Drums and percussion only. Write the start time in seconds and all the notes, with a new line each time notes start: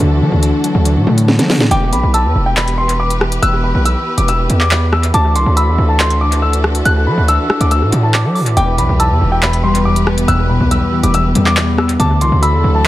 0.43 closed hi-hat
0.64 closed hi-hat
0.85 closed hi-hat
1.18 closed hi-hat
1.28 snare
1.39 snare, closed hi-hat
1.50 snare, open hi-hat
1.60 snare
1.71 closed hi-hat
1.93 closed hi-hat
2.14 closed hi-hat
2.57 clap, closed hi-hat
2.68 closed hi-hat
2.89 closed hi-hat
3.10 closed hi-hat
3.21 cross-stick
3.32 closed hi-hat
3.43 closed hi-hat
3.85 closed hi-hat
4.18 closed hi-hat
4.28 closed hi-hat
4.50 closed hi-hat
4.61 clap
4.71 clap
4.93 cross-stick
5.03 closed hi-hat
5.14 closed hi-hat
5.36 closed hi-hat
5.57 closed hi-hat
6.00 clap, closed hi-hat
6.10 closed hi-hat
6.32 closed hi-hat
6.53 closed hi-hat
6.64 cross-stick
6.75 closed hi-hat
6.85 closed hi-hat
7.28 closed hi-hat
7.50 cross-stick
7.61 closed hi-hat
7.71 closed hi-hat
7.92 closed hi-hat
8.14 clap
8.36 open hi-hat
8.46 closed hi-hat
8.57 closed hi-hat
8.78 closed hi-hat
9.00 closed hi-hat
9.43 clap, closed hi-hat
9.53 closed hi-hat
9.75 closed hi-hat
9.96 closed hi-hat
10.07 cross-stick
10.18 closed hi-hat
10.28 closed hi-hat
10.71 closed hi-hat
11.03 closed hi-hat
11.14 closed hi-hat
11.35 closed hi-hat
11.46 clap
11.57 clap
11.78 cross-stick
11.89 closed hi-hat
12.00 closed hi-hat
12.21 closed hi-hat
12.43 closed hi-hat